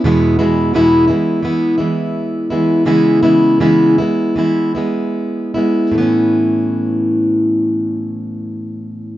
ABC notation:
X:1
M:4/4
L:1/8
Q:"Swing 16ths" 1/4=78
K:A
V:1 name="Steel-string acoustic guitar" clef=bass
[E,,B,,E,G,B,E] [E,,B,,E,G,B,E] [E,,B,,E,G,B,E] [E,G,B,E] [E,G,B,E] [E,G,B,E]2 [E,G,B,E] | [C,E,G,B,E] [C,E,G,B,E] [C,E,G,B,E] [G,B,E] [E,G,B,E] [G,B,E]2 [G,B,E] | [A,,E,B,CE]8 |]